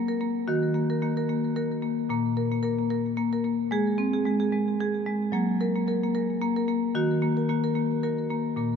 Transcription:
Already playing: F#3
0.08 A#4
0.21 A#3
0.48 D#3 F#4
0.74 A#3
0.90 A#4
1.02 A#3
1.17 A#4
1.29 A#3
1.56 A#4
1.83 A#3
2.09 A#2 A#3
2.37 A#4
2.52 A#3
2.63 A#4
2.79 A#3
2.91 A#4
3.17 A#3
3.33 A#4
3.44 A#3
3.71 G#3 G#4
3.98 C4
4.13 G#4
4.25 G#3
4.40 G#4
4.52 G#3
4.81 G#4
5.06 G#3
5.32 F#3 A#3
5.61 A#4
5.76 A#3
5.88 A#4
6.03 A#3
6.15 A#4
6.42 A#3
6.56 A#4
6.68 A#3
6.95 D#3 F#4
7.22 A#3
7.37 A#4
7.49 A#3
7.64 A#4
7.75 A#3
8.03 A#4
8.30 A#3
8.56 A#2 A#3

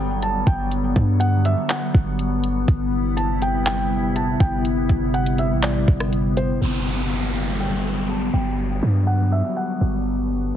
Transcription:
Already playing: G1 D3 F#3 G3 B3 G5
0.22 A5, closed hi-hat
0.47 G1 G5, kick, closed hi-hat
0.71 closed hi-hat
0.96 G2, kick
1.20 F#5, closed hi-hat
1.45 E5, closed hi-hat
1.70 F#5, clap, closed hi-hat
1.94 G1, kick
2.19 closed hi-hat
2.44 closed hi-hat
2.68 G1 C3 G3 E4, kick, closed hi-hat
3.17 A5, closed hi-hat
3.42 G5, closed hi-hat
3.66 G5, clap, closed hi-hat
4.16 A5, closed hi-hat
4.40 G1 G5, kick, closed hi-hat
4.65 closed hi-hat
4.89 G1, kick
5.14 F#5, closed hi-hat
5.26 closed hi-hat
5.38 E5, closed hi-hat
5.51 A1
5.63 D5, clap, closed hi-hat
5.88 G1, kick
6.00 cross-stick
6.13 closed hi-hat
6.37 C5, closed hi-hat
6.61 G1 D3 F#3 G3 B3, downlifter
7.10 A5
7.35 G5
7.60 G5
8.09 A5
8.34 G1 G5
8.83 G2
9.07 F#5
9.32 E5
9.57 F#5
9.81 G1

